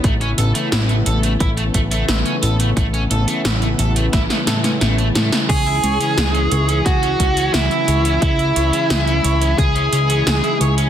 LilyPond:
<<
  \new Staff \with { instrumentName = "Lead electric guitar" } { \time 4/4 \key cis \minor \tempo 4 = 88 r1 | r1 | gis'2 fis'4 e'4 | e'2 gis'4. r8 | }
  \new Staff \with { instrumentName = "Overdriven electric guitar" } { \time 4/4 \key cis \minor a16 cis'16 a'16 a16 e'16 a16 a'16 a16 e'16 a16 a16 a16 e'16 cis'16 a'16 a16 | a16 cis'16 a'16 a16 e'16 a16 a'16 a16 e'16 a16 a'16 cis'16 a16 a16 a16 a16 | cis'16 e'16 cis''16 cis'16 gis'16 cis'16 cis''16 cis'16 gis'16 cis'16 cis'16 cis'16 gis'16 e'16 cis''16 cis'16 | cis'16 e'16 cis''16 cis'16 gis'16 cis'16 cis''16 cis'16 gis'16 cis'16 cis'16 cis'16 gis'16 e'16 cis''16 cis'16 | }
  \new Staff \with { instrumentName = "Analog synth pad" } { \time 4/4 \key cis \minor << { <a b e'>1~ | <a b e'>1 | <gis gis'>1~ | <gis gis'>1 | } \\ { <cis e>1~ | <cis e>1~ | <cis e>1~ | <cis e>1 | } >> }
  \new Staff \with { instrumentName = "Analog synth bass" } { \clef bass \time 4/4 \key cis \minor a,,8 a,,8 a,,8 a,,8 a,,8 a,,8 a,,8 a,,8 | a,,8 a,,8 a,,8 a,,8 a,,8 a,8 a,,8 a,8 | cis,8 cis,8 cis,8 cis,8 cis,8 cis,8 cis,8 cis,8 | cis,8 cis,8 cis,8 cis,8 cis,8 cis,8 cis,8 cis,8 | }
  \new DrumStaff \with { instrumentName = "Drums" } \drummode { \time 4/4 <hh bd>16 hh16 hh16 hh16 <hh sn>16 hh16 hh16 hh16 <hh bd>16 hh16 <hh bd>16 hh16 <hh sn>16 hh16 hh16 hh16 | <hh bd>16 hh16 hh16 hh16 <hh sn>16 hh16 hh16 hh16 <hh bd sn>16 <hh sn>16 <hh sn>16 <hh sn>16 <hh sn>16 hh16 <hh sn>16 <hh sn>16 | <cymc hh bd>16 hh16 hh16 hh16 <hh sn>16 hh16 hh16 hh16 <hh bd>16 hh16 <hh bd>16 hh16 <hh sn>16 hh16 hh16 hh16 | <hh bd>16 hh16 hh16 hh16 <hh sn>16 hh16 hh16 hh16 <hh bd>16 hh16 hh16 hh16 <hh sn>16 hh16 hh16 hh16 | }
>>